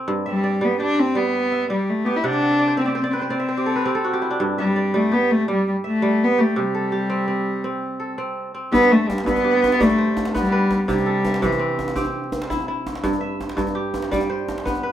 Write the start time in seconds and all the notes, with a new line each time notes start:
Already playing: C3 C4 A4
0.08 G2
0.26 G3 E5
0.44 D5
0.61 G3 B3
0.80 D4 G4
1.00 C4
1.15 G3 B3
1.52 E5
1.70 G3
1.90 A3
2.05 B3 G4
2.16 E4
2.24 C3 D4 F#5
2.33 E5
2.42 F#5
2.51 E5
2.59 D5
2.68 C5
2.77 C4 E5
2.86 C4 D5
2.94 C4 C5
3.01 C4 D5
3.09 C4
3.13 C4 B4
3.22 C5
3.30 C4 D5
3.40 E5
3.49 C5
3.57 G4
3.66 A4
3.76 B4
3.85 C4 G4
3.95 A4
4.04 F#4
4.13 G4
4.22 E4
4.31 D4
4.40 G2
4.58 G3 E5
4.76 D5
4.94 G3 A3
5.12 B3 G4
5.31 A3
5.48 G3
5.69 G3
5.84 A3 E5
6.02 G3
6.24 B3
6.38 A3 G4
6.56 C3 G3
6.75 A4
6.92 G4
7.10 C4
7.28 C4
7.64 C4
8.00 A4
8.18 C4
8.54 C4
8.72 G2 B3, djembe bass
8.82 djembe tone
8.91 A3 E5
9.09 G3, djembe tone
9.18 djembe slap
9.26 G2 B3, djembe slap, djembe bass
9.36 djembe tone
9.44 G4
9.64 djembe tone
9.72 djembe slap
9.80 G3 A3 D5, djembe bass
9.89 djembe slap, djembe tone
9.98 C5
10.07 djembe slap
10.17 djembe slap, djembe tone
10.25 djembe slap
10.35 G3 B3, djembe bass
10.45 djembe tone
10.52 B4
10.71 djembe tone
10.88 C3 G3, djembe bass
10.98 djembe tone
11.06 A4
11.25 djembe tone
11.34 djembe slap
11.42 C3 E3, djembe slap, djembe bass
11.52 djembe tone
11.59 C4
11.79 djembe tone
11.88 djembe slap
11.96 C4 G4, djembe bass
12.05 djembe slap, djembe tone
12.24 djembe slap
12.32 djembe slap, djembe tone
12.42 djembe slap
12.50 E4, djembe bass
12.60 djembe tone
12.68 E4
12.87 djembe tone
12.95 djembe slap
13.04 G2, djembe bass
13.13 djembe tone
13.21 E5
13.41 djembe tone
13.49 djembe slap
13.57 G2, djembe slap, djembe bass
13.67 djembe tone
13.75 G4
13.94 djembe tone
14.02 djembe slap
14.11 G3 D5, djembe bass
14.21 djembe slap, djembe tone
14.30 C5
14.39 djembe slap
14.48 djembe slap, djembe tone
14.58 djembe slap
14.65 B3, djembe bass
14.75 djembe tone
14.83 B4